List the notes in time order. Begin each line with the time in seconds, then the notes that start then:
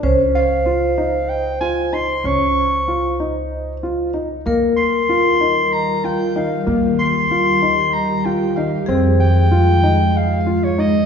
Already playing: A#4
0.03 C#2 C#4 C5
0.35 F5
0.66 F4
0.98 D#4
1.29 G5
1.61 F4 G#5
1.93 D#4 C6
2.24 C#2 C#4 C#6
2.88 F4
3.20 D#4
3.83 F4
4.14 D#4
4.46 D#2 D#3 G3 A#3 F4 A#4
4.77 C6
5.09 F4
5.41 D#4
5.73 A#5
6.04 F4 G5
6.36 D#4 F5
6.67 D#2 A#3 G4
7.00 C6
7.31 F4
7.62 D#4
7.94 A#5
8.25 F4 G5
8.56 D#4 F5
8.86 F2 G#3 C4 F4 G#4
9.20 G5
9.51 F4
9.84 D#4
10.17 F5
10.46 F4
10.64 C#5
10.78 D#4 D#5